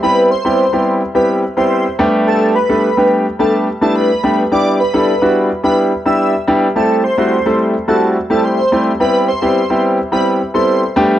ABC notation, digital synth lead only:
X:1
M:4/4
L:1/16
Q:1/4=107
K:Clyd
V:1 name="Digital synth lead"
B2 c4 z2 B z2 c2 z3 | A2 B4 z2 A z2 A B3 z | d2 B4 z2 B z2 e2 z3 | A2 c4 z2 A z2 A c3 z |
B2 c4 z2 B z2 c2 z3 |]